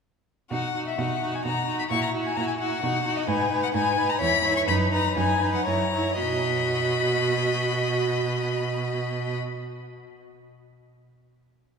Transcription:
0.50 0.91 B2 soft
0.50 0.74 D#4 soft
0.50 0.74 F#4 soft
0.50 0.84 F#5 medium
0.74 0.97 D#4 soft
0.74 0.98 F#4 soft
0.88 1.00 E5 soft
0.98 1.38 B2 medium
0.98 1.20 D#4 soft
0.98 1.21 F#4 soft
0.98 1.36 F#5 soft
1.21 1.44 D#4 soft
1.21 1.44 F#4 soft
1.34 1.45 G#5 medium
1.45 1.84 B2 soft
1.45 1.67 D#4 soft
1.45 1.67 F#4 soft
1.45 1.79 A#5 medium
1.68 1.90 D#4 soft
1.68 1.90 F#4 soft
1.79 1.84 B5 medium
1.90 2.29 A#2 medium
1.90 2.13 E4 soft
1.90 2.13 F#4 soft
1.90 2.02 C#6 medium
2.03 2.11 A#5 medium
2.13 2.36 E4 soft
2.13 2.36 F#4 soft
2.26 2.38 G#5 medium
2.36 2.75 A#2 medium
2.36 2.59 E4 soft
2.36 2.60 F#4 soft
2.36 2.47 A#5 medium
2.47 2.52 G#5 medium
2.59 2.82 E4 soft
2.59 2.82 F#4 soft
2.59 3.17 F#5 medium
2.82 3.21 B2 medium
2.82 3.05 D#4 soft
2.82 3.05 F#4 soft
3.05 3.27 D#4 soft
3.05 3.27 F#4 soft
3.16 3.29 D#5 medium
3.27 3.67 G#2 medium
3.27 3.50 D#4 medium
3.27 3.50 B4 soft
3.27 3.62 G#5 medium
3.50 3.74 D#4 soft
3.50 3.73 B4 soft
3.63 3.68 F#5 medium
3.74 4.13 G#2 medium
3.74 3.97 D#4 soft
3.74 3.97 B4 soft
3.74 4.11 G#5 medium
3.97 4.20 D#4 soft
3.97 4.20 B4 medium
4.09 4.20 A#5 medium
4.20 4.60 E2 medium
4.20 4.44 E4 soft
4.20 4.43 C#5 soft
4.20 4.55 B5 medium
4.44 4.68 E4 soft
4.44 4.67 C#5 soft
4.56 4.61 C#6 medium
4.67 5.09 F#2 medium
4.67 4.92 D#4 soft
4.67 4.90 B4 soft
4.67 4.76 B5 medium
4.91 5.16 D#4 soft
4.91 5.14 B4 soft
4.91 5.16 A#5 medium
5.15 5.58 F#2 medium
5.15 5.41 D#4 soft
5.15 5.40 B4 soft
5.15 5.53 G#5 medium
5.41 5.66 D#4 soft
5.41 5.65 B4 medium
5.55 5.67 F#5 medium
5.65 6.11 F#2 medium
5.65 5.93 E4 soft
5.65 5.92 C#5 soft
5.65 6.19 A#5 medium
5.93 6.19 E4 soft
5.93 6.18 C#5 soft
6.18 9.37 B2 medium
6.18 9.36 F#4 medium
6.18 9.35 D#5 soft
6.18 9.37 B5 medium

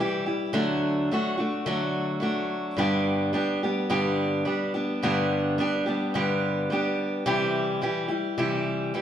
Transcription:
0.00 0.26 E3 medium
0.00 0.26 G3 medium
0.00 0.26 E4 medium
0.00 0.25 G4 medium
0.26 0.53 G3 soft
0.26 0.54 E4 soft
0.26 0.54 G4 medium
0.53 1.09 D3 medium
0.53 1.10 F#3 medium
0.53 1.10 A3 loud
0.53 1.12 D4 loud
0.53 1.10 F#4 medium
1.11 1.39 F#3 medium
1.11 1.39 A3 medium
1.11 1.37 D4 medium
1.11 1.36 F#4 medium
1.38 1.66 A3 soft
1.38 1.66 D4 medium
1.38 1.66 F#4 medium
1.66 2.22 D3 medium
1.66 2.19 F#3 loud
1.66 2.20 A3 medium
1.66 2.22 D4 medium
1.66 2.21 F#4 medium
2.20 2.77 F#3 medium
2.20 2.78 A3 medium
2.20 2.78 D4 medium
2.20 2.78 F#4 medium
2.77 3.33 G2 medium
2.77 3.34 D3 medium
2.77 3.32 G3 medium
2.77 3.33 B3 medium
2.77 3.33 D4 medium
2.77 3.35 G4 medium
3.33 3.61 G3 medium
3.33 3.62 B3 medium
3.33 3.62 D4 medium
3.33 3.62 G4 medium
3.63 3.89 G3 medium
3.63 3.89 B3 medium
3.63 3.89 D4 medium
3.63 3.89 G4 medium
3.89 4.45 G2 medium
3.89 4.46 D3 medium
3.89 4.45 G3 medium
3.89 4.44 B3 medium
3.89 4.46 D4 medium
3.89 4.47 G4 medium
4.45 4.73 G3 medium
4.45 4.73 B3 medium
4.45 4.73 D4 medium
4.45 4.73 G4 medium
4.74 5.02 G3 soft
4.74 5.02 B3 medium
4.74 5.02 D4 medium
4.74 5.02 G4 medium
5.03 5.58 G2 medium
5.03 5.58 D3 medium
5.03 5.58 G3 loud
5.03 5.58 B3 loud
5.03 5.59 D4 loud
5.03 5.61 G4 medium
5.58 5.86 G3 medium
5.58 5.86 B3 medium
5.58 5.86 D4 medium
5.58 5.85 G4 medium
5.86 6.14 G3 medium
5.86 6.14 B3 soft
5.86 6.14 D4 medium
5.86 6.14 G4 medium
6.14 6.70 G2 medium
6.14 6.70 D3 medium
6.14 6.69 G3 medium
6.14 6.70 B3 medium
6.14 6.70 D4 medium
6.14 6.70 G4 loud
6.70 7.25 G3 medium
6.70 7.25 B3 medium
6.70 7.27 D4 medium
6.70 7.26 G4 medium
7.26 7.81 C3 loud
7.26 7.80 E3 medium
7.26 7.81 G3 loud
7.26 7.82 E4 loud
7.26 7.82 G4 loud
7.82 8.09 E3 medium
7.82 8.10 G3 medium
7.82 8.08 E4 medium
7.82 8.07 G4 medium
8.08 8.37 G3 soft
8.08 8.37 E4 medium
8.08 8.37 G4 medium
8.38 8.93 C3 medium
8.38 8.93 E3 medium
8.38 8.94 G3 medium
8.38 8.94 E4 medium
8.38 8.94 G4 loud
8.94 9.02 E3 medium
8.94 9.02 G3 medium
8.94 9.02 E4 medium
8.94 9.02 G4 medium

